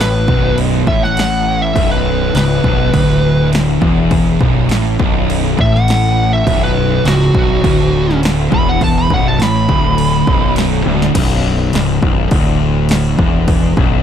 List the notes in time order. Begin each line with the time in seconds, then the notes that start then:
0.00 A1 A2 B4, snare
0.28 B0 B1, kick
0.58 crash
0.87 A1 A2 E5, kick
1.03 F#5, snare
1.17 snare, crash
1.62 E5
1.75 B0 B1, kick, crash
1.91 B4
2.33 C#1 C#2 B4, snare, crash
2.64 B0 B1, kick
2.93 D1 D2, kick, crash
3.53 snare, crash
3.81 E1 E2, kick
4.11 kick, crash
4.40 B0 B1, kick
4.69 A1 A2, snare, crash
4.99 B0 B1, kick
5.30 crash
5.58 A1 A2 E5, kick
5.74 F#5, snare
5.88 snare, crash
6.33 E5
6.47 B0 B1, kick, crash
6.64 B4
7.04 C#1 C#2 F#4, snare, crash
7.34 B0 B1, kick
7.64 D1 D2, kick, crash
8.11 snare
8.23 snare, crash
8.52 E1 E2 B5, kick
8.69 F#5
8.81 A5, kick, crash
8.98 B5
9.10 B0 B1 F#5, kick
9.28 A5
9.38 A1 A2 B5, snare, crash
9.68 D1 D2, kick
9.98 crash
10.27 B0 B1, kick
10.56 snare, crash
10.85 D1 D2, high tom
11.02 snare
11.15 B0 B1, kick, crash
11.73 C#1 C#2, snare, crash
12.02 B0 B1, kick
12.31 D1 D2, kick, crash
12.89 snare, crash
13.18 E1 E2, kick
13.48 kick, crash
13.77 B0 B1, kick